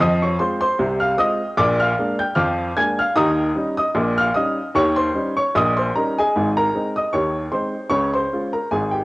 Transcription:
0.00 F2 F3 D#5 D#6
0.22 C#5 C#6
0.39 G#3 C4 F4 C5 C6
0.61 C5 C6
0.79 C2 C3
1.00 F5 F6
1.18 G#3 C4 F4 D#5 D#6
1.57 A#1 A#2 D5 D6
1.80 F5 F6
1.99 G#3 A#3 D4
2.19 G5 G6
2.35 F2 F3 F5 D6 F6
2.77 G#3 A#3 D4 G#5 G#6
2.99 F5 F6
3.16 D#2 D#3 D#5 A#5 D#6
3.55 G3 C#4 D#4
3.77 D#5 D#6
3.95 A#1 A#2
4.18 F5 F6
4.34 G3 C#4 D#4 D#5 D#6
4.75 D#2 D#3 C#5 C#6
4.96 C5 C6
5.14 G3 C#4 D#4
5.37 C#5 C#6
5.55 A#1 A#2 D#5 D#6
5.77 C5 C6
5.95 G3 C#4 D#4 A#4 A#5
6.19 G#4 D#5 G#5
6.36 G#1 G#2
6.57 A#4 A#5
6.75 G#3 C4 D#4
6.96 D#5 D#6
7.13 D#2 D#3 C#5 C#6
7.52 G#3 C4 D#4 C5 C6
7.89 C#2 C#3 C#5 C#6
8.13 C5 C6
8.33 G#3 C#4 F4
8.53 A#4 A#5
8.71 G#1 G#2 G#4 G#5
8.91 G4 G5

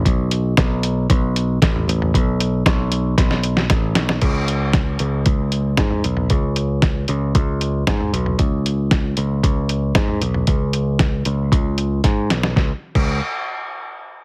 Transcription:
0.05 B1, kick, closed hi-hat
0.31 closed hi-hat
0.57 B1, kick, snare, closed hi-hat
0.83 closed hi-hat
1.10 B1, kick, closed hi-hat
1.36 closed hi-hat
1.62 A1, kick, snare, closed hi-hat
1.76 floor tom
1.88 A1, closed hi-hat
2.02 floor tom
2.14 B1, kick, closed hi-hat
2.40 closed hi-hat
2.66 B1, kick, snare, closed hi-hat
2.92 closed hi-hat
3.18 B1, kick, snare, closed hi-hat
3.31 snare
3.43 closed hi-hat
3.57 snare
3.70 A1, kick, snare, closed hi-hat
3.95 B1, snare, closed hi-hat
4.09 snare
4.21 C#2, kick, closed hi-hat, crash
4.48 closed hi-hat
4.73 kick, snare, closed hi-hat
4.99 C#2, closed hi-hat
5.26 C#2, kick, closed hi-hat
5.52 closed hi-hat
5.77 G#2, kick, snare, closed hi-hat
5.91 floor tom
6.04 B1, closed hi-hat
6.17 floor tom
6.30 C#2, kick, closed hi-hat
6.56 closed hi-hat
6.82 kick, snare, closed hi-hat
7.08 C#2, closed hi-hat
7.35 C#2, kick, closed hi-hat
7.61 closed hi-hat
7.87 G#2, kick, snare, closed hi-hat
8.00 floor tom
8.13 B1, closed hi-hat
8.26 floor tom
8.39 C#2, kick, closed hi-hat
8.66 closed hi-hat
8.91 kick, snare, closed hi-hat
9.17 C#2, closed hi-hat
9.43 C#2, kick, closed hi-hat
9.69 closed hi-hat
9.95 G#2, kick, snare, closed hi-hat
10.08 floor tom
10.22 B1, closed hi-hat
10.34 floor tom
10.47 C#2, kick, closed hi-hat
10.73 closed hi-hat
10.99 kick, snare, closed hi-hat
11.25 C#2, closed hi-hat
11.52 C#2, kick, closed hi-hat
11.78 closed hi-hat
12.04 G#2, kick, snare, closed hi-hat
12.30 B1, snare, closed hi-hat
12.43 snare
12.56 C#2, kick, snare
12.95 C#2, kick, crash

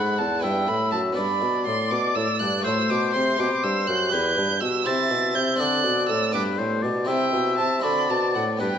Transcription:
Already playing: G#2 D#4 A4 F#5 B5
0.18 E2 A5
0.39 B3 E4 B4 G5
0.43 G2 E5
0.68 A2 B5
0.92 F#2 A5
1.12 B3 D4 D5
1.17 G2 B5
1.41 B2
1.66 A2 C6
1.91 B2 D6
2.15 A2 E6
2.40 G2 F#6
2.61 A3 F#4 C5
2.65 A2 E6
2.90 B2 D6
3.14 C3 C6
3.36 B2 G4 B4 D6
3.63 G2 E6
3.87 F#2 F#6
4.09 E2 G4 B4 G6
4.37 G2
4.61 B2 E6
4.84 C3 E4 C5 E5 A6
5.10 B2
5.35 C3 G6
5.56 D3 C4 D4 A4 F#6
5.60 D3 D5
5.84 B2
6.09 A2 E6
6.32 G2 B3 D4 G4 B4 D6
6.36 G2
6.58 A2 C5
6.83 B2 D5
7.05 C3 C4 E4 G4 E5 G5
7.09 C3
7.33 B2
7.58 C3 A5
7.80 C4 D4 F#4 D5
7.84 D3 B5
8.10 B2 A5
8.35 A2 F#5
8.57 B3 D4 G4 B4
8.61 G2 G5

